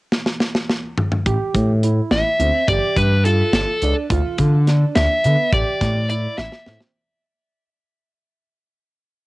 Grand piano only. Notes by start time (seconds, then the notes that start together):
1.26 G4
1.83 E4
2.40 C4
2.69 G4
3.26 F4
3.82 D4
4.11 F4
4.68 D4
5.24 B3
5.53 G4
6.10 E4
6.67 C4